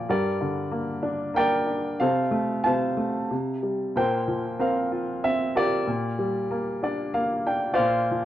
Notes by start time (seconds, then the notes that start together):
Already playing: A#2 F3 D5 F5 G5
0.09 G2 G4 A#4 D5
0.41 D3
0.71 A#3
1.02 D4
1.34 A#3 A#4 D5 G5
1.67 D4
2.00 C3 A4 C5 F5
2.31 A3
2.64 C3 C5 F5 A5
2.96 A3
3.30 C3
3.63 G3
3.96 A#2 A#4 C5 G5
4.28 F3
4.59 C4 A#4 C5 F5
4.92 F4
5.24 C4 E5
5.56 F4 G4 A#4 D5
5.88 A#2
6.19 G3
6.51 A#3
6.83 D4 D5
7.14 A#3 F5
7.47 D4 G5
7.74 C5 D5 F5
7.78 A#2
8.11 F3